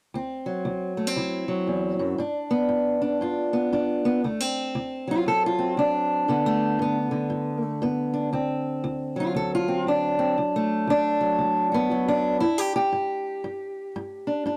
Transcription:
0.14 D2 C4
0.46 F#3
0.65 D2
0.97 A3
1.07 C4
1.16 D2 E4
1.48 F#3
1.67 E2
1.99 F#2
2.18 G2 D4
2.51 B3
2.69 G2
3.02 D4
3.21 G2 F4
3.53 B3
3.73 G2 D4
4.05 B3
4.24 D2 A3
4.40 C4
4.75 D2
5.08 F#3 F4
5.26 D2 A4
5.46 F4
5.59 C4
5.77 D2 D4
6.28 G2 D3 B3
6.46 A3
6.79 G2 B3
7.11 D3
7.30 G2
7.82 G2 B3
8.14 D4
8.33 D2 C4
8.84 D2
9.16 F#3 F4
9.35 D2 A4
9.55 F4
9.68 C4
9.87 D2 D4
10.19 C4
10.38 D2
10.56 A3
10.87 D2 D4
11.21 F#3
11.39 D2
11.72 B3 F#4
11.90 D2 F#3
12.08 D4
12.40 G2 E4
12.58 G4
12.76 G4
12.92 G2
13.44 G2
13.96 G2
14.27 D4
14.46 G2 D4

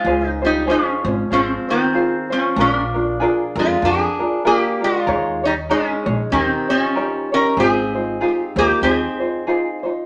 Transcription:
Already playing: G#3 F4
0.05 C#2 C#4 F4 G#4 C5
0.28 D#4
0.42 G3 C#4 F4 C5
0.46 D#4
0.67 F3 C#4 F4 G#4 C5
0.71 C#4
1.05 G#1 C#4 F4 C5
1.31 G#1 F3 C4 F4 G#4 C5
1.68 D#3 C4 F4 C5
1.93 F4 G#4 C5
2.30 F3 C#4 F4 C5
2.56 A#1 F3 D4 F4 G#4 A#4
2.61 C#4
2.72 D4
2.94 D4 F4 A#4
3.20 D4 F4 G#4 A#4
3.56 F2 G#3 D4 F4 A#4
3.82 F2 D4 F4 G#4 A#4
4.19 D4 F4 A#4
4.45 A#3 D4 F4 G4 A#4
4.80 G#3 D4 F4 A#4
5.06 D#2 D#4 G#4 A#4 C#5
5.43 G3 D#4 C#5
5.69 G#3 C#4 D#4 G#4 A#4 C#5
6.06 A#1 D#4 G#4 C#5
6.32 D#2 D#3 C4 D#4 G4 A#4
6.69 F3 C#4 D#4 G4 C#5
6.95 D#4 G4 A#4 C#5
7.32 C#4 D#4 G4 A#4 C#5
7.57 G#1 C4 D#4 F4 G#4 C5
7.95 D#4 F4 C5
8.21 D#4 F4 G#4 C5
8.28 G4
8.56 D#2 A#3 D#4 F4 G4 C5
8.82 D#2 C4 D#4 F4 G#4 C5
9.20 D#4 F4 C5
9.47 D#4 F4 G#4 C5
9.83 D#4 F4 C5

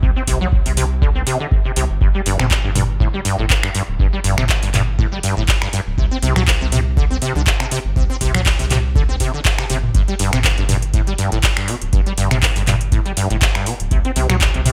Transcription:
0.03 C2 C3, kick
0.16 C4
0.27 C2 C3, kick, open hi-hat
0.41 C2 F#3
0.52 kick
0.66 C2 C3, open hi-hat
0.77 C3, open hi-hat
1.02 D3, kick
1.15 C4
1.27 C3, open hi-hat
1.40 D3
1.51 kick
1.65 C3
1.76 C2 C3, open hi-hat
1.90 G1
2.01 G1 G2, kick
2.15 G3
2.26 G1 G2, open hi-hat
2.39 G1 C3, finger snap, mid tom
2.51 kick, clap
2.64 G1 G2
2.75 G2, mid tom, open hi-hat
3.00 A2, kick
3.14 G3
3.25 G2, open hi-hat
3.39 G1 A2
3.50 kick, clap
3.63 G2, finger snap
3.75 G2, open hi-hat
3.88 D1
3.99 G1 G2, kick
4.13 G3
4.24 G1 G2, open hi-hat
4.38 G1 C3, finger snap, mid tom
4.49 kick, clap
4.63 G1 G2, open hi-hat
4.74 G2, clap, mid tom, open hi-hat
4.99 A2, kick
5.12 G3
5.23 G2, open hi-hat
5.37 G1 A2
5.48 kick, clap
5.62 G2, finger snap
5.73 G2, open hi-hat
5.87 D1
5.98 C2 C3, kick
6.11 C4
6.23 C2 C3, open hi-hat
6.36 C2 F#3, finger snap, mid tom
6.47 kick, clap
6.61 C2 C3
6.72 C3, mid tom, open hi-hat
6.97 D3, kick
7.11 C4
7.22 C3, open hi-hat
7.35 C2 D3
7.47 kick, clap
7.60 C3, finger snap
7.71 C3, open hi-hat
7.85 G1
7.96 C2 C3, kick
8.10 C4
8.21 C2 C3, kick, open hi-hat
8.35 C2 F#3, finger snap, mid tom
8.46 kick, clap
8.59 C2 C3, open hi-hat
8.71 C3, clap, mid tom, open hi-hat
8.95 D3, kick
9.09 C4
9.20 C3, kick, open hi-hat
9.34 D3
9.45 kick, clap
9.59 C3, finger snap
9.70 G1 C3, open hi-hat
9.83 mid tom
9.94 G1 G2, kick, closed hi-hat
10.08 G3, closed hi-hat
10.19 G1 G2, open hi-hat
10.33 G1 C3, finger snap, closed hi-hat, mid tom
10.44 kick, clap, closed hi-hat
10.58 G1 G2, closed hi-hat
10.69 G2, mid tom, open hi-hat
10.82 closed hi-hat
10.94 A2, kick, closed hi-hat
11.07 G3, closed hi-hat
11.18 G2, open hi-hat
11.32 G1 A2, closed hi-hat
11.43 kick, clap, closed hi-hat
11.57 G2, finger snap, closed hi-hat
11.68 B2, open hi-hat
11.82 D1, closed hi-hat
11.93 G1 G2, kick, closed hi-hat
12.06 G3, closed hi-hat
12.18 G1 G2, open hi-hat
12.31 G1 C3, finger snap, closed hi-hat, mid tom
12.42 kick, clap, closed hi-hat
12.56 G1 G2, open hi-hat
12.67 G2, clap, mid tom, open hi-hat
12.81 closed hi-hat
12.92 A2, kick, closed hi-hat
13.06 G3, closed hi-hat
13.17 G2, open hi-hat
13.30 G1 A2, closed hi-hat
13.42 kick, clap, closed hi-hat
13.55 G2, finger snap, closed hi-hat
13.66 B2, open hi-hat
13.80 D1, closed hi-hat
13.91 C2 C3, kick, closed hi-hat
14.05 C4, closed hi-hat
14.16 C2 C3, open hi-hat
14.30 C2 F#3, finger snap, closed hi-hat, mid tom
14.41 kick, clap, closed hi-hat
14.54 C2 C3, closed hi-hat
14.66 C3, mid tom, open hi-hat

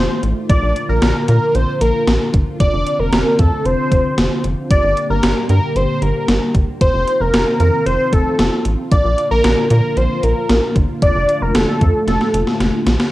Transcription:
Already playing: D#3 A3 F4 C5
0.23 A1, closed hi-hat
0.49 A#1 D3 A#3 D5, kick, closed hi-hat
0.63 A#1
0.76 closed hi-hat
0.89 A#1 A#4
1.02 A#1, snare, closed hi-hat
1.28 A#2 A#4, closed hi-hat
1.55 A#1 C5, closed hi-hat
1.81 A#1 A#4, closed hi-hat
2.07 A#1, snare, closed hi-hat
2.34 G1, kick, closed hi-hat
2.60 F1 C4 D5, kick, closed hi-hat
2.73 F1
2.87 closed hi-hat
2.99 F1 A#4
3.12 F1, snare, closed hi-hat
3.39 F2 A4, kick, closed hi-hat
3.65 F1 C5, closed hi-hat
3.92 F1, kick, closed hi-hat
4.18 F1, snare, closed hi-hat
4.44 F1, closed hi-hat
4.70 G1 A#3 G4 D5, kick, closed hi-hat
4.84 G1
4.97 closed hi-hat
5.10 G1 A#4
5.23 G1, snare, closed hi-hat
5.49 G2 A#4, closed hi-hat
5.76 G1 C5, closed hi-hat
6.02 G1 A#4, closed hi-hat
6.28 G1, snare, closed hi-hat
6.55 G1, kick, closed hi-hat
6.81 F1 D#3 C4 F4 C5, kick, closed hi-hat
6.94 F1
7.08 closed hi-hat
7.21 F1 A#4
7.34 F1, snare, closed hi-hat
7.60 F2 A#4, closed hi-hat
7.86 F1 C5, closed hi-hat
8.13 F1 A4, kick, closed hi-hat
8.39 F1, snare, closed hi-hat
8.65 A1, closed hi-hat
8.92 A#1 D3 A#3 D5, kick, closed hi-hat
9.05 A#1
9.18 closed hi-hat
9.31 A#1 A#4
9.44 A#1, snare, closed hi-hat
9.70 A#2 A#4, closed hi-hat
9.97 A#1 C5, closed hi-hat
10.23 A#1 A#4, closed hi-hat
10.50 A#1, snare, closed hi-hat
10.76 G1, kick, closed hi-hat
11.02 F1 A3 D5, kick, closed hi-hat
11.15 F1
11.29 closed hi-hat
11.42 F1 A#4
11.55 F1 A4, snare, closed hi-hat
11.81 F2, kick, closed hi-hat
12.07 F1 A4, snare, closed hi-hat
12.21 snare
12.34 F1, closed hi-hat
12.47 snare
12.60 F1, snare, closed hi-hat
12.86 A#1, snare, closed hi-hat
13.00 snare

